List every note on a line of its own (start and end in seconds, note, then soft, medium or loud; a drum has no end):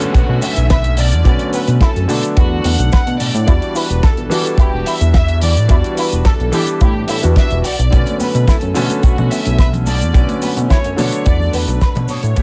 0.00 1.22 D3 loud
0.00 1.22 F#3 medium
0.00 1.22 A3 medium
0.00 1.23 B3 medium
0.00 1.23 C#4 loud
0.00 0.13 A4 loud
0.00 closed hi-hat medium
0.00 downlifter medium
0.00 shaker medium
0.14 0.26 B2 soft
0.14 0.25 B3 medium
0.14 0.42 F#4 loud
0.14 kick loud
0.14 closed hi-hat medium
0.14 shaker soft
0.29 0.40 B2 medium
0.42 0.50 B3 medium
0.42 0.70 E5 loud
0.42 open hi-hat loud
0.42 shaker loud
0.56 1.14 B1 loud
0.56 closed hi-hat medium
0.56 shaker medium
0.70 0.77 B4 medium
0.70 0.96 E5 loud
0.70 kick loud
0.70 snare loud
0.70 closed hi-hat medium
0.70 shaker soft
0.84 closed hi-hat medium
0.97 1.09 B2 loud
0.97 1.54 D5 loud
0.97 open hi-hat loud
0.97 shaker medium
1.12 1.23 E2 medium
1.12 closed hi-hat soft
1.12 shaker medium
1.24 1.38 B1 loud
1.24 2.05 D3 medium
1.24 2.05 F#3 medium
1.24 2.06 A3 medium
1.24 2.06 B3 medium
1.24 1.30 B3 medium
1.24 2.06 C#4 medium
1.24 kick loud
1.24 closed hi-hat medium
1.24 shaker soft
1.39 closed hi-hat medium
1.53 1.61 B3 medium
1.53 1.79 B4 loud
1.53 open hi-hat loud
1.53 shaker medium
1.68 1.79 B2 medium
1.68 closed hi-hat medium
1.68 shaker medium
1.81 1.88 E4 loud
1.81 2.07 A4 loud
1.81 kick loud
1.81 snare loud
1.81 closed hi-hat medium
1.81 shaker soft
1.96 2.07 F#2 medium
1.96 closed hi-hat soft
2.08 2.20 B2 medium
2.08 3.44 D3 medium
2.08 3.44 F#3 medium
2.08 3.45 A3 medium
2.08 3.45 B3 medium
2.08 3.45 D4 loud
2.08 2.21 A4 loud
2.08 open hi-hat loud
2.08 shaker medium
2.23 closed hi-hat medium
2.23 shaker medium
2.36 2.60 E2 medium
2.36 2.48 B3 medium
2.36 2.62 F#4 loud
2.36 kick loud
2.36 closed hi-hat medium
2.36 shaker soft
2.64 2.77 E2 medium
2.64 2.72 B3 medium
2.64 2.91 F#5 loud
2.64 open hi-hat loud
2.64 shaker medium
2.79 2.90 B1 loud
2.79 closed hi-hat medium
2.79 shaker medium
2.92 3.00 B4 medium
2.92 3.18 F#5 loud
2.92 kick loud
2.92 snare loud
2.92 closed hi-hat medium
2.92 shaker medium
3.07 3.18 B2 loud
3.07 closed hi-hat medium
3.20 3.32 A2 soft
3.20 3.31 B2 loud
3.20 3.76 D5 loud
3.20 open hi-hat loud
3.20 shaker medium
3.35 3.46 A2 loud
3.35 closed hi-hat medium
3.35 shaker medium
3.46 3.60 E2 loud
3.46 4.27 E3 medium
3.46 4.28 G3 medium
3.46 4.28 B3 medium
3.46 4.28 D4 medium
3.46 3.52 E4 medium
3.46 4.28 F#4 medium
3.46 kick loud
3.46 closed hi-hat medium
3.46 shaker medium
3.62 closed hi-hat medium
3.75 3.83 E4 medium
3.75 4.04 B4 loud
3.75 open hi-hat loud
3.75 shaker medium
3.90 4.01 E1 medium
3.90 closed hi-hat medium
3.90 shaker medium
4.03 4.10 A4 loud
4.03 4.30 A4 loud
4.03 kick loud
4.03 snare loud
4.03 closed hi-hat medium
4.03 shaker soft
4.17 4.29 B1 medium
4.17 closed hi-hat soft
4.30 5.66 E3 medium
4.30 4.42 E3 loud
4.30 5.66 G3 medium
4.30 5.67 B3 medium
4.30 5.67 D4 medium
4.30 5.67 F#4 loud
4.30 4.57 A4 loud
4.30 open hi-hat loud
4.30 shaker medium
4.45 closed hi-hat medium
4.45 shaker medium
4.58 4.70 E1 soft
4.58 4.70 E4 medium
4.58 4.87 G4 loud
4.58 kick loud
4.58 closed hi-hat medium
4.58 shaker medium
4.73 4.84 E1 medium
4.86 4.94 E4 medium
4.86 5.13 E5 loud
4.86 open hi-hat loud
4.86 shaker medium
5.01 5.58 E2 loud
5.01 closed hi-hat medium
5.01 shaker medium
5.14 5.22 E5 medium
5.14 5.40 E5 loud
5.14 kick loud
5.14 snare loud
5.14 closed hi-hat medium
5.14 shaker soft
5.28 closed hi-hat medium
5.41 5.53 E3 medium
5.41 5.94 D5 loud
5.41 open hi-hat loud
5.41 shaker medium
5.57 5.68 A2 medium
5.57 closed hi-hat medium
5.57 shaker medium
5.68 5.82 E2 loud
5.68 6.49 E3 medium
5.68 6.50 G3 medium
5.68 6.50 B3 medium
5.68 6.50 D4 medium
5.68 5.75 E4 medium
5.68 6.50 F#4 loud
5.68 kick loud
5.68 closed hi-hat medium
5.68 shaker soft
5.84 closed hi-hat medium
5.97 6.05 E4 medium
5.97 6.25 B4 loud
5.97 open hi-hat loud
5.97 shaker medium
6.12 6.24 E1 medium
6.12 closed hi-hat soft
6.12 shaker medium
6.25 6.33 A4 loud
6.25 6.77 A4 loud
6.25 kick loud
6.25 snare loud
6.25 closed hi-hat medium
6.25 shaker soft
6.40 6.51 B1 medium
6.40 closed hi-hat soft
6.52 7.20 E3 medium
6.52 6.64 E3 loud
6.52 7.20 G3 medium
6.52 7.20 B3 medium
6.52 7.21 D4 medium
6.52 7.21 G4 loud
6.52 open hi-hat loud
6.52 shaker medium
6.67 closed hi-hat medium
6.67 shaker medium
6.81 7.05 A2 medium
6.81 6.92 E4 medium
6.81 7.07 G4 loud
6.81 kick loud
6.81 closed hi-hat medium
6.81 shaker soft
7.08 7.21 A2 medium
7.08 7.13 E4 medium
7.08 7.21 E5 loud
7.08 open hi-hat loud
7.08 shaker medium
7.23 7.35 E2 loud
7.23 7.63 E3 medium
7.23 7.63 G3 medium
7.23 7.63 B3 medium
7.23 7.63 D4 medium
7.23 7.63 F#4 medium
7.23 closed hi-hat medium
7.23 shaker medium
7.36 7.48 D4 medium
7.36 7.62 E5 loud
7.36 kick loud
7.36 snare loud
7.36 closed hi-hat medium
7.36 shaker soft
7.51 7.62 E1 loud
7.51 closed hi-hat medium
7.64 7.76 B1 soft
7.64 7.75 F#4 medium
7.64 8.16 D5 loud
7.64 open hi-hat loud
7.64 shaker medium
7.79 7.90 B1 medium
7.79 closed hi-hat soft
7.79 shaker medium
7.91 8.05 B1 loud
7.91 8.72 D3 medium
7.91 8.72 F#3 medium
7.91 8.72 A3 medium
7.91 7.97 B3 medium
7.91 8.73 B3 medium
7.91 8.73 C#4 medium
7.91 kick loud
7.91 closed hi-hat medium
7.91 shaker medium
7.91 shaker soft
8.06 closed hi-hat medium
8.06 high conga medium
8.06 shaker soft
8.20 8.27 B3 medium
8.20 8.48 B4 loud
8.20 open hi-hat loud
8.20 muted conga medium
8.20 high conga medium
8.20 shaker medium
8.35 8.46 B2 medium
8.35 closed hi-hat soft
8.35 shaker medium
8.48 8.55 E4 loud
8.48 8.75 A4 medium
8.48 kick loud
8.48 snare loud
8.48 closed hi-hat medium
8.48 muted conga medium
8.48 shaker medium
8.48 shaker soft
8.61 8.73 F#2 medium
8.61 closed hi-hat medium
8.61 shaker soft
8.74 8.87 B2 loud
8.74 10.11 D3 medium
8.74 10.11 F#3 medium
8.74 10.11 A3 medium
8.74 10.12 B3 medium
8.74 10.12 C#4 loud
8.74 9.02 A4 medium
8.74 open hi-hat loud
8.74 low conga medium
8.74 shaker medium
8.90 closed hi-hat medium
8.90 muted conga soft
8.90 shaker medium
9.03 9.15 B2 soft
9.03 9.14 B3 medium
9.03 9.31 F#4 loud
9.03 kick loud
9.03 closed hi-hat medium
9.03 shaker soft
9.03 shaker medium
9.18 9.29 B2 medium
9.18 muted conga medium
9.18 low conga loud
9.18 shaker soft
9.31 9.38 B3 medium
9.31 9.58 E5 loud
9.31 open hi-hat loud
9.31 shaker medium
9.45 10.03 B1 loud
9.45 closed hi-hat medium
9.45 shaker medium
9.58 9.66 B4 medium
9.58 9.72 E5 loud
9.58 kick loud
9.58 snare loud
9.58 closed hi-hat medium
9.58 muted conga medium
9.58 shaker medium
9.73 closed hi-hat medium
9.73 low conga loud
9.73 shaker soft
9.86 9.97 B2 medium
9.86 10.38 D5 loud
9.86 open hi-hat loud
9.86 muted conga medium
9.86 high conga medium
9.86 shaker medium
10.01 10.13 E2 medium
10.01 closed hi-hat soft
10.01 shaker medium
10.13 10.27 B1 loud
10.13 10.94 D3 medium
10.13 10.94 F#3 medium
10.13 10.95 A3 medium
10.13 10.19 B3 medium
10.13 10.95 B3 medium
10.13 10.95 C#4 medium
10.13 kick loud
10.13 closed hi-hat medium
10.13 shaker medium
10.29 closed hi-hat medium
10.29 muted conga medium
10.29 high conga medium
10.29 shaker soft
10.42 10.50 B3 medium
10.42 10.55 B4 medium
10.42 open hi-hat medium
10.42 high conga medium
10.42 shaker medium
10.57 10.68 B2 medium
10.57 closed hi-hat medium
10.57 muted conga medium
10.57 shaker medium
10.70 10.77 E4 loud
10.70 10.96 C#5 loud
10.70 kick medium
10.70 snare loud
10.70 closed hi-hat medium
10.70 shaker medium
10.70 shaker soft
10.84 10.96 F#2 medium
10.84 closed hi-hat medium
10.84 shaker soft
10.96 11.09 B2 loud
10.96 12.33 D3 medium
10.96 12.33 F#3 medium
10.96 12.33 A3 medium
10.96 12.34 B3 medium
10.96 12.34 D4 loud
10.96 11.24 C#5 loud
10.96 open hi-hat loud
10.96 muted conga medium
10.96 low conga medium
10.96 shaker medium
11.12 closed hi-hat medium
11.12 shaker medium
11.25 11.49 E2 medium
11.25 11.37 B3 medium
11.25 11.53 D5 loud
11.25 kick loud
11.25 closed hi-hat medium
11.25 muted conga medium
11.25 shaker medium
11.39 low conga medium
11.39 shaker soft
11.53 11.66 E2 medium
11.53 11.61 B3 medium
11.53 12.09 B4 loud
11.53 open hi-hat loud
11.53 shaker medium
11.68 11.79 B1 loud
11.68 closed hi-hat medium
11.68 muted conga medium
11.68 shaker medium
11.81 11.89 B4 medium
11.81 kick loud
11.81 snare loud
11.81 closed hi-hat loud
11.81 shaker medium
11.81 shaker soft
11.95 12.07 B2 loud
11.95 closed hi-hat soft
11.95 muted conga medium
11.95 low conga medium
11.95 shaker soft
12.08 12.21 A2 soft
12.08 12.20 B2 loud
12.08 12.42 C#5 loud
12.08 open hi-hat medium
12.08 high conga medium
12.08 shaker loud
12.23 12.34 A2 loud
12.23 closed hi-hat medium
12.23 shaker medium
12.36 12.42 A1 loud
12.36 12.42 E3 medium
12.36 12.42 A3 medium
12.36 12.41 A3 medium
12.36 12.42 B3 medium
12.36 12.42 C#4 medium
12.36 12.42 G4 medium
12.36 kick loud
12.36 closed hi-hat medium
12.36 muted conga medium
12.36 shaker medium